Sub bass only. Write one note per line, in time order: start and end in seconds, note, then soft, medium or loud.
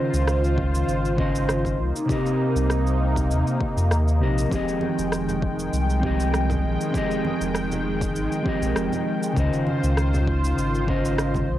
0.13 0.84 C#2 medium
0.88 1.80 G#1 loud
1.79 1.92 C2 medium
2.56 3.32 C2 medium
3.30 3.44 D#2 medium
3.77 3.92 F2 medium
3.91 4.23 D#2 loud
4.21 4.46 A#1 loud
4.51 4.65 F1 loud
4.98 5.69 F1 medium
5.73 6.65 C2 loud
6.64 6.77 A#1 medium
7.41 8.17 F1 medium
8.15 8.29 G#1 medium
8.62 8.73 A#1 loud
8.76 8.89 F1 medium
9.36 9.50 C#2 loud
9.83 10.54 C#2 medium
10.58 11.50 G#1 loud
11.49 11.59 C2 medium